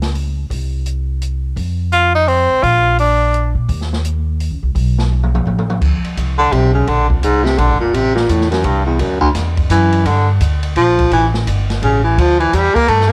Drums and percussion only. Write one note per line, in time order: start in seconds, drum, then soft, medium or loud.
0.02 snare medium
0.02 open hi-hat soft
0.15 open hi-hat soft
0.50 kick soft
0.50 open hi-hat soft
0.86 closed hi-hat soft
1.22 closed hi-hat soft
1.57 kick soft
1.57 open hi-hat soft
1.92 closed hi-hat medium
2.28 open hi-hat soft
2.63 kick soft
2.63 open hi-hat soft
2.98 open hi-hat soft
3.34 closed hi-hat medium
3.69 kick soft
3.69 open hi-hat soft
3.81 snare soft
3.93 snare soft
4.05 closed hi-hat medium
4.40 open hi-hat soft
4.75 kick soft
4.75 open hi-hat soft
4.98 snare medium
5.12 high tom soft
5.23 mid tom medium
5.35 mid tom medium
5.47 mid tom medium
5.59 mid tom medium
5.70 mid tom medium
5.82 kick medium
5.82 crash medium
6.04 ride soft
6.17 kick soft
6.17 hi-hat pedal soft
6.17 ride medium
6.52 kick soft
6.52 ride medium
6.87 kick soft
6.87 ride soft
7.10 kick soft
7.23 kick soft
7.23 hi-hat pedal medium
7.23 ride medium
7.46 snare soft
7.58 kick soft
7.58 ride medium
7.94 kick soft
7.94 ride medium
8.17 snare soft
8.29 kick soft
8.29 hi-hat pedal medium
8.29 ride medium
8.41 snare soft
8.52 snare soft
8.52 ride soft
8.64 kick soft
8.64 ride medium
8.99 kick soft
8.99 ride medium
9.22 kick soft
9.35 kick soft
9.35 snare soft
9.35 hi-hat pedal medium
9.35 ride medium
9.57 kick medium
9.57 ride soft
9.70 kick soft
9.70 hi-hat pedal medium
9.70 ride medium
9.92 ride soft
10.05 kick soft
10.05 ride medium
10.40 kick soft
10.40 hi-hat pedal medium
10.40 ride medium
10.63 ride medium
10.76 kick soft
10.76 ride medium
10.99 kick soft
10.99 ride soft
11.11 kick soft
11.11 ride medium
11.34 snare medium
11.47 kick soft
11.47 hi-hat pedal medium
11.47 ride medium
11.70 snare soft
11.70 ride soft
11.82 kick soft
11.82 ride medium
12.18 kick soft
12.18 ride medium
12.40 ride soft
12.53 kick soft
12.53 hi-hat pedal medium
12.53 ride medium
12.76 kick medium
12.76 ride soft
12.88 kick soft
12.88 ride medium
13.01 snare soft